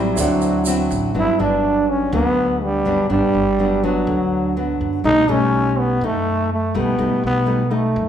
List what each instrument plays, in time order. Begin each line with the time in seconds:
Already playing: upright bass A1, nylon-string guitar A2 F#3 C4 E4, trombone G3, grand piano E4 A4 C5 G5
0.14 upright bass D2, grand piano E4 C5, shaker
0.18 nylon-string guitar D3, trombone F#3, grand piano D5 F#5
0.41 shaker
0.65 nylon-string guitar F#3 C4 E4, shaker
0.91 upright bass A1, shaker
1.14 upright bass G1, nylon-string guitar G2 F#3 B3 D4, trombone E4
1.39 upright bass G1, nylon-string guitar F#3 B3 D4, trombone D4
1.89 trombone C#4
2.12 upright bass D2, nylon-string guitar D3 F#3 B3 D4, trombone B3
2.63 trombone G3
2.85 upright bass G1, nylon-string guitar F#3 B3 D4
3.09 upright bass G1, nylon-string guitar G2 B3 D4, trombone G3
3.34 upright bass G1
3.59 nylon-string guitar F#3 B3 D4
3.83 nylon-string guitar F#3 B3 D4, trombone F#3
4.07 upright bass D2, nylon-string guitar D3
4.57 nylon-string guitar F#3 B3 D4
4.81 upright bass F#2
5.04 upright bass B1, nylon-string guitar B2 G3 A3 D#4, trombone D#4
5.28 upright bass B1, nylon-string guitar G3 A3 D#4, trombone C#4
5.79 trombone B3
6.01 upright bass F#2, nylon-string guitar A3 D#4, trombone A3
6.53 trombone A3
6.74 upright bass B1, nylon-string guitar G3 A3 D#4, trombone B3
6.98 upright bass B1, nylon-string guitar B2 G3 A3 D#4
7.23 upright bass B1, trombone B3
7.46 nylon-string guitar G3 A3 D#4
7.71 nylon-string guitar A3 D#4, trombone A3
7.96 upright bass F#2